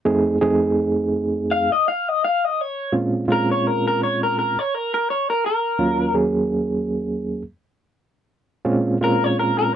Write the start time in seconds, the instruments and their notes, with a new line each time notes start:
0.05 reed electric piano F2 A3 C4 D#4 G#4
0.41 reed electric piano F2 A3 C4 D#4 G#4
1.51 clean electric guitar F5
1.72 clean electric guitar D#5
1.88 clean electric guitar F5
2.09 clean electric guitar D#5
2.24 clean electric guitar F5
2.45 clean electric guitar D#5
2.61 clean electric guitar C#5
2.92 reed electric piano A#2 G#3 C4 C#4 F4
3.28 reed electric piano A#2 G#3 C4 C#4 F4
3.32 clean electric guitar A#4
3.52 clean electric guitar C#5
3.67 clean electric guitar A#4
3.88 clean electric guitar A#4
4.03 clean electric guitar C#5
4.23 clean electric guitar A#4
4.39 clean electric guitar A#4
4.59 clean electric guitar C#5
4.74 clean electric guitar A#4
4.94 clean electric guitar A#4
5.10 clean electric guitar C#5
5.30 clean electric guitar A#4
5.46 clean electric guitar A#4
5.79 reed electric piano D#2 F#3 A#3 C#4 F4
6.14 reed electric piano D#2 F#3 A#3 C#4 G#4
8.65 reed electric piano A#2 G#3 C4 C#4 F4
9.01 reed electric piano A#2 G#3 C4 C#4 F4, clean electric guitar A#4
9.24 clean electric guitar C#5
9.39 clean electric guitar A#4
9.59 clean electric guitar A#4